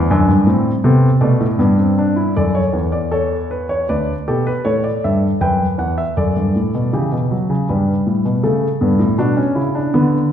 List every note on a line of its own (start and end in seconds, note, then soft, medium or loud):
0.00 0.81 C5 medium
0.10 0.28 F#2 medium
0.10 0.33 D4 medium
0.28 0.47 G2 medium
0.47 0.70 A2 medium
0.47 0.70 C4 medium
0.84 1.08 C3 medium
0.84 1.08 B3 medium
0.84 1.08 A4 medium
1.21 1.40 B2 medium
1.21 1.45 A3 medium
1.21 2.32 D5 medium
1.40 1.59 A2 medium
1.59 2.33 G2 medium
1.59 1.78 B3 medium
1.79 1.98 C4 medium
1.99 2.17 D4 medium
2.16 2.35 E4 medium
2.36 2.60 F#2 medium
2.36 3.09 A4 medium
2.36 2.55 D5 medium
2.55 2.78 C#5 medium
2.73 3.84 E2 medium
2.92 3.11 D5 medium
3.11 3.35 A4 medium
3.11 3.68 C#5 medium
3.51 3.69 B4 medium
3.69 3.87 C#5 medium
3.89 4.12 D2 medium
3.89 4.12 B4 medium
3.89 4.12 D5 medium
4.28 4.51 B2 medium
4.28 4.51 G4 medium
4.28 4.45 A4 medium
4.47 4.64 B4 medium
4.65 4.88 A2 medium
4.65 5.38 A4 medium
4.65 4.83 C#5 medium
4.84 5.02 D5 medium
5.04 5.27 G2 medium
5.04 5.27 E5 medium
5.41 5.64 F#2 medium
5.41 6.14 B4 medium
5.41 5.64 G5 medium
5.78 6.01 E2 medium
5.78 5.96 F#5 medium
5.98 6.15 E5 medium
6.17 6.34 F#2 medium
6.17 6.90 A4 medium
6.17 6.90 D5 medium
6.36 6.54 G2 soft
6.56 6.73 A2 medium
6.75 6.92 B2 medium
6.93 7.11 C#3 medium
6.93 7.16 E3 medium
6.93 7.66 G4 medium
7.12 7.35 B2 medium
7.31 7.54 F#3 medium
7.50 7.67 C#3 medium
7.69 7.92 G2 medium
7.69 8.41 G3 medium
7.69 8.41 B4 medium
8.07 8.24 A2 medium
8.25 8.43 B2 medium
8.43 8.66 C#3 medium
8.43 8.67 A3 medium
8.43 9.16 A4 medium
8.81 8.99 G2 medium
8.81 9.04 B3 medium
8.99 9.17 A2 medium
9.18 9.41 B2 medium
9.18 9.37 D4 medium
9.18 9.42 F#4 medium
9.37 9.60 C#4 medium
9.55 9.79 C#3 medium
9.55 10.32 E4 medium
9.75 9.93 D4 medium
9.94 10.32 D3 medium
9.94 10.17 B3 medium